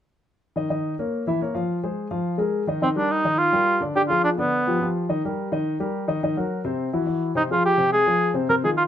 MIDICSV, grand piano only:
0, 0, Header, 1, 2, 480
1, 0, Start_track
1, 0, Key_signature, -3, "major"
1, 0, Tempo, 283152
1, 946, Time_signature, 4, 2, 24, 8
1, 15043, End_track
2, 0, Start_track
2, 0, Title_t, "Grand piano"
2, 0, Program_c, 0, 0
2, 946, Note_on_c, 0, 51, 61
2, 950, Note_on_c, 0, 63, 59
2, 964, Note_on_c, 0, 75, 62
2, 1143, Note_off_c, 0, 51, 0
2, 1145, Note_off_c, 0, 63, 0
2, 1153, Note_off_c, 0, 75, 0
2, 1187, Note_on_c, 0, 51, 62
2, 1191, Note_on_c, 0, 75, 64
2, 1192, Note_on_c, 0, 63, 64
2, 1581, Note_off_c, 0, 51, 0
2, 1583, Note_off_c, 0, 63, 0
2, 1583, Note_off_c, 0, 75, 0
2, 1680, Note_on_c, 0, 70, 55
2, 1681, Note_on_c, 0, 58, 55
2, 1686, Note_on_c, 0, 73, 54
2, 2068, Note_off_c, 0, 70, 0
2, 2069, Note_off_c, 0, 58, 0
2, 2072, Note_off_c, 0, 73, 0
2, 2153, Note_on_c, 0, 52, 65
2, 2165, Note_on_c, 0, 64, 65
2, 2166, Note_on_c, 0, 76, 65
2, 2347, Note_off_c, 0, 52, 0
2, 2355, Note_off_c, 0, 64, 0
2, 2355, Note_off_c, 0, 76, 0
2, 2396, Note_on_c, 0, 58, 54
2, 2401, Note_on_c, 0, 70, 57
2, 2412, Note_on_c, 0, 73, 59
2, 2589, Note_off_c, 0, 58, 0
2, 2592, Note_off_c, 0, 70, 0
2, 2599, Note_off_c, 0, 73, 0
2, 2622, Note_on_c, 0, 77, 64
2, 2623, Note_on_c, 0, 53, 62
2, 2623, Note_on_c, 0, 65, 62
2, 3018, Note_off_c, 0, 53, 0
2, 3018, Note_off_c, 0, 65, 0
2, 3018, Note_off_c, 0, 77, 0
2, 3112, Note_on_c, 0, 72, 59
2, 3115, Note_on_c, 0, 56, 56
2, 3115, Note_on_c, 0, 68, 57
2, 3503, Note_off_c, 0, 72, 0
2, 3506, Note_off_c, 0, 56, 0
2, 3506, Note_off_c, 0, 68, 0
2, 3575, Note_on_c, 0, 77, 65
2, 3576, Note_on_c, 0, 53, 66
2, 3577, Note_on_c, 0, 65, 65
2, 3974, Note_off_c, 0, 53, 0
2, 3974, Note_off_c, 0, 77, 0
2, 3975, Note_off_c, 0, 65, 0
2, 4034, Note_on_c, 0, 56, 59
2, 4045, Note_on_c, 0, 68, 61
2, 4047, Note_on_c, 0, 70, 59
2, 4442, Note_off_c, 0, 56, 0
2, 4448, Note_off_c, 0, 68, 0
2, 4449, Note_off_c, 0, 70, 0
2, 4530, Note_on_c, 0, 51, 68
2, 4543, Note_on_c, 0, 63, 68
2, 4549, Note_on_c, 0, 75, 62
2, 4734, Note_off_c, 0, 51, 0
2, 4741, Note_off_c, 0, 63, 0
2, 4745, Note_off_c, 0, 75, 0
2, 4775, Note_on_c, 0, 51, 68
2, 4778, Note_on_c, 0, 63, 62
2, 4784, Note_on_c, 0, 75, 65
2, 4977, Note_off_c, 0, 51, 0
2, 4979, Note_off_c, 0, 63, 0
2, 4982, Note_off_c, 0, 75, 0
2, 5019, Note_on_c, 0, 55, 65
2, 5026, Note_on_c, 0, 67, 64
2, 5030, Note_on_c, 0, 70, 61
2, 5416, Note_off_c, 0, 55, 0
2, 5420, Note_off_c, 0, 67, 0
2, 5423, Note_off_c, 0, 70, 0
2, 5503, Note_on_c, 0, 51, 70
2, 5511, Note_on_c, 0, 75, 62
2, 5516, Note_on_c, 0, 63, 63
2, 5898, Note_off_c, 0, 51, 0
2, 5903, Note_off_c, 0, 75, 0
2, 5906, Note_off_c, 0, 63, 0
2, 5975, Note_on_c, 0, 67, 63
2, 5978, Note_on_c, 0, 55, 64
2, 5990, Note_on_c, 0, 70, 59
2, 6373, Note_off_c, 0, 67, 0
2, 6375, Note_off_c, 0, 55, 0
2, 6382, Note_off_c, 0, 70, 0
2, 6451, Note_on_c, 0, 50, 72
2, 6463, Note_on_c, 0, 62, 67
2, 6469, Note_on_c, 0, 74, 70
2, 6654, Note_off_c, 0, 50, 0
2, 6661, Note_off_c, 0, 62, 0
2, 6665, Note_off_c, 0, 74, 0
2, 6702, Note_on_c, 0, 50, 68
2, 6710, Note_on_c, 0, 62, 66
2, 6716, Note_on_c, 0, 74, 66
2, 6901, Note_off_c, 0, 50, 0
2, 6905, Note_off_c, 0, 62, 0
2, 6909, Note_off_c, 0, 74, 0
2, 6948, Note_on_c, 0, 53, 59
2, 6952, Note_on_c, 0, 65, 64
2, 6952, Note_on_c, 0, 68, 63
2, 7341, Note_off_c, 0, 53, 0
2, 7343, Note_off_c, 0, 65, 0
2, 7343, Note_off_c, 0, 68, 0
2, 7423, Note_on_c, 0, 50, 67
2, 7431, Note_on_c, 0, 62, 66
2, 7444, Note_on_c, 0, 74, 69
2, 7818, Note_off_c, 0, 50, 0
2, 7822, Note_off_c, 0, 62, 0
2, 7830, Note_off_c, 0, 74, 0
2, 7921, Note_on_c, 0, 65, 65
2, 7923, Note_on_c, 0, 53, 65
2, 7929, Note_on_c, 0, 67, 63
2, 8112, Note_off_c, 0, 65, 0
2, 8113, Note_off_c, 0, 53, 0
2, 8117, Note_off_c, 0, 67, 0
2, 8148, Note_on_c, 0, 53, 64
2, 8153, Note_on_c, 0, 65, 63
2, 8166, Note_on_c, 0, 67, 59
2, 8541, Note_off_c, 0, 53, 0
2, 8544, Note_off_c, 0, 65, 0
2, 8551, Note_off_c, 0, 67, 0
2, 8630, Note_on_c, 0, 51, 68
2, 8637, Note_on_c, 0, 75, 68
2, 8639, Note_on_c, 0, 63, 69
2, 8825, Note_off_c, 0, 51, 0
2, 8829, Note_off_c, 0, 75, 0
2, 8830, Note_off_c, 0, 63, 0
2, 8902, Note_on_c, 0, 55, 61
2, 8903, Note_on_c, 0, 67, 65
2, 8906, Note_on_c, 0, 70, 67
2, 9281, Note_off_c, 0, 55, 0
2, 9281, Note_off_c, 0, 67, 0
2, 9283, Note_off_c, 0, 70, 0
2, 9355, Note_on_c, 0, 63, 70
2, 9357, Note_on_c, 0, 51, 68
2, 9367, Note_on_c, 0, 75, 73
2, 9745, Note_off_c, 0, 63, 0
2, 9746, Note_off_c, 0, 51, 0
2, 9752, Note_off_c, 0, 75, 0
2, 9830, Note_on_c, 0, 55, 66
2, 9836, Note_on_c, 0, 67, 66
2, 9838, Note_on_c, 0, 70, 65
2, 10222, Note_off_c, 0, 55, 0
2, 10226, Note_off_c, 0, 67, 0
2, 10227, Note_off_c, 0, 70, 0
2, 10302, Note_on_c, 0, 63, 68
2, 10308, Note_on_c, 0, 51, 70
2, 10313, Note_on_c, 0, 75, 67
2, 10501, Note_off_c, 0, 63, 0
2, 10504, Note_off_c, 0, 51, 0
2, 10507, Note_off_c, 0, 75, 0
2, 10564, Note_on_c, 0, 63, 68
2, 10566, Note_on_c, 0, 51, 70
2, 10576, Note_on_c, 0, 75, 69
2, 10753, Note_off_c, 0, 63, 0
2, 10755, Note_off_c, 0, 51, 0
2, 10760, Note_off_c, 0, 75, 0
2, 10795, Note_on_c, 0, 54, 65
2, 10801, Note_on_c, 0, 70, 64
2, 10802, Note_on_c, 0, 66, 64
2, 11185, Note_off_c, 0, 54, 0
2, 11189, Note_off_c, 0, 66, 0
2, 11189, Note_off_c, 0, 70, 0
2, 11266, Note_on_c, 0, 48, 63
2, 11268, Note_on_c, 0, 60, 70
2, 11269, Note_on_c, 0, 72, 63
2, 11659, Note_off_c, 0, 48, 0
2, 11661, Note_off_c, 0, 60, 0
2, 11661, Note_off_c, 0, 72, 0
2, 11748, Note_on_c, 0, 52, 57
2, 11755, Note_on_c, 0, 66, 61
2, 11756, Note_on_c, 0, 64, 64
2, 11944, Note_off_c, 0, 52, 0
2, 11948, Note_off_c, 0, 66, 0
2, 11949, Note_off_c, 0, 64, 0
2, 11977, Note_on_c, 0, 64, 57
2, 11986, Note_on_c, 0, 52, 60
2, 11986, Note_on_c, 0, 66, 60
2, 12374, Note_off_c, 0, 64, 0
2, 12379, Note_off_c, 0, 52, 0
2, 12379, Note_off_c, 0, 66, 0
2, 12462, Note_on_c, 0, 48, 64
2, 12462, Note_on_c, 0, 60, 66
2, 12471, Note_on_c, 0, 72, 66
2, 12660, Note_off_c, 0, 48, 0
2, 12661, Note_off_c, 0, 60, 0
2, 12666, Note_off_c, 0, 72, 0
2, 12725, Note_on_c, 0, 65, 59
2, 12726, Note_on_c, 0, 53, 60
2, 12732, Note_on_c, 0, 68, 62
2, 13111, Note_off_c, 0, 53, 0
2, 13111, Note_off_c, 0, 65, 0
2, 13115, Note_off_c, 0, 68, 0
2, 13181, Note_on_c, 0, 48, 66
2, 13189, Note_on_c, 0, 60, 67
2, 13193, Note_on_c, 0, 72, 67
2, 13577, Note_off_c, 0, 48, 0
2, 13581, Note_off_c, 0, 60, 0
2, 13584, Note_off_c, 0, 72, 0
2, 13678, Note_on_c, 0, 53, 64
2, 13685, Note_on_c, 0, 65, 62
2, 13686, Note_on_c, 0, 68, 65
2, 14067, Note_off_c, 0, 53, 0
2, 14071, Note_off_c, 0, 65, 0
2, 14071, Note_off_c, 0, 68, 0
2, 14139, Note_on_c, 0, 48, 68
2, 14148, Note_on_c, 0, 60, 66
2, 14148, Note_on_c, 0, 72, 68
2, 14339, Note_off_c, 0, 48, 0
2, 14344, Note_off_c, 0, 60, 0
2, 14344, Note_off_c, 0, 72, 0
2, 14396, Note_on_c, 0, 48, 67
2, 14400, Note_on_c, 0, 60, 68
2, 14400, Note_on_c, 0, 72, 66
2, 14589, Note_off_c, 0, 48, 0
2, 14591, Note_off_c, 0, 60, 0
2, 14591, Note_off_c, 0, 72, 0
2, 14639, Note_on_c, 0, 63, 63
2, 14645, Note_on_c, 0, 65, 65
2, 14650, Note_on_c, 0, 51, 67
2, 15027, Note_off_c, 0, 63, 0
2, 15031, Note_off_c, 0, 65, 0
2, 15034, Note_off_c, 0, 51, 0
2, 15043, End_track
0, 0, End_of_file